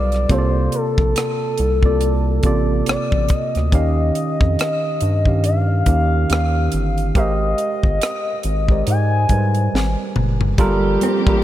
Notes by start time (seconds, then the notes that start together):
Already playing: B1 G3 F4 A4 B4 D5
0.12 cross-stick, closed hi-hat
0.29 C2 C3 A#3 F4 A4 C5, kick, closed hi-hat
0.39 D5
0.72 A4, closed hi-hat
0.98 A#1, kick
1.16 cross-stick, closed hi-hat
1.58 C2, closed hi-hat
1.83 C3 A#3 F4 A4 D5, kick
2.01 closed hi-hat
2.43 A1 C3 A#3 F4 A4 D5, kick, closed hi-hat
2.86 A1 D5, cross-stick, closed hi-hat
3.12 A1, kick
3.29 D#5, kick, closed hi-hat
3.55 D2, cross-stick, closed hi-hat
3.72 D#2 D#3 C#4 G4 F5, kick, closed hi-hat
4.15 closed hi-hat
4.41 F2, kick
4.59 cross-stick, closed hi-hat
5.01 G2, closed hi-hat
5.25 D#3 C#4 G4 F5, kick
5.44 F5, closed hi-hat
5.86 D#2 D#3 C#4 G4 F5, kick, closed hi-hat
6.29 D#2 D#3 C#4 G4 D#5, cross-stick, closed hi-hat
6.39 F5
6.72 G1, closed hi-hat
6.98 closed hi-hat
7.15 G#1 G#3 G4 A#4 C5 D#5 F5, kick, closed hi-hat
7.58 closed hi-hat
7.83 G1, kick
8.02 cross-stick, closed hi-hat
8.43 G#1, closed hi-hat
8.69 G#3 G4 A#4 C5 D5, kick
8.87 G#2 G#5, closed hi-hat
9.29 G#2 G3 G#3 A#4 B4 G#5, kick, closed hi-hat
9.38 C5
9.55 closed hi-hat
9.74 G#1, snare
10.16 F#1, mid tom
10.41 floor tom
10.58 G1 F3 G3 A#3 F4 G4 A4 A#4, kick, closed hi-hat, muted conga, low conga
11.01 C4, closed hi-hat, high conga
11.27 A1 G3 F4 A4 A#4, kick